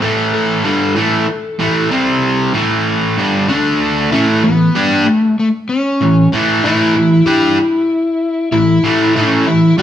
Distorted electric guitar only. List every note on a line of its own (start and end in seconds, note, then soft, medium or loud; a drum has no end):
0.01 0.63 A2 medium
0.01 0.64 E3 medium
0.01 0.64 A3 loud
0.64 0.95 G2 medium
0.64 0.95 D3 medium
0.64 0.95 G3 loud
0.96 1.27 A2 medium
0.96 1.27 E3 medium
0.96 1.27 A3 loud
1.29 muted distorted electric guitar stroke medium
1.59 1.90 A2 medium
1.59 1.90 E3 loud
1.59 1.90 A3 loud
1.91 2.53 C3 medium
1.91 2.53 G3 medium
1.91 2.53 C4 loud
2.54 3.16 A2 medium
2.54 3.16 E3 medium
2.54 3.17 A3 medium
3.18 3.48 G2 medium
3.18 3.47 D3 medium
3.18 3.49 G3 medium
3.49 4.11 D3 medium
3.49 4.11 A3 medium
3.49 4.11 D4 medium
4.12 4.42 A2 medium
4.12 4.43 E3 medium
4.12 4.43 A3 loud
4.44 4.69 A2 medium
4.44 4.69 E3 medium
4.75 5.06 G3 medium
4.75 5.06 D4 medium
4.75 5.06 G4 loud
6.01 6.26 A2 medium
6.01 6.27 E3 medium
6.32 6.63 A2 medium
6.32 6.63 E3 loud
6.32 6.64 A3 loud
6.64 6.95 A2 medium
6.64 6.95 E3 loud
6.64 6.95 A3 loud
6.96 7.21 A2 medium
6.96 7.21 E3 medium
7.26 7.57 G3 loud
7.26 7.57 D4 loud
7.26 7.58 G4 loud
8.52 8.78 A2 medium
8.52 8.78 E3 medium
8.84 9.15 A2 loud
8.84 9.15 E3 loud
8.84 9.15 A3 loud
9.16 9.46 A2 loud
9.16 9.46 E3 loud
9.16 9.47 A3 loud
9.48 9.73 A2 medium
9.48 9.72 E3 medium
9.78 9.82 G3 loud